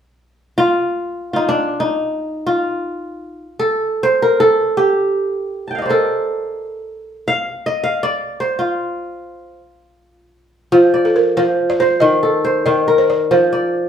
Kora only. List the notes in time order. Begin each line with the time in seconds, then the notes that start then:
0.58 F4
1.33 D#4 F4
1.49 D4
1.80 D#4
2.46 F4
3.59 A4
4.03 C5
4.22 A#4
4.40 A4
4.77 G4
5.68 G5 A5
5.75 D#5 F5
5.82 C5 D5
5.89 A4 A#4
7.28 F5
7.66 D#5
7.84 F5
8.03 D5
8.40 C5
8.59 F4
10.72 F3
10.94 D5
11.37 F3
11.80 C5
12.01 D#3
12.23 A4
12.45 C5
12.66 D#3
12.88 A#4
13.31 F3
13.53 D5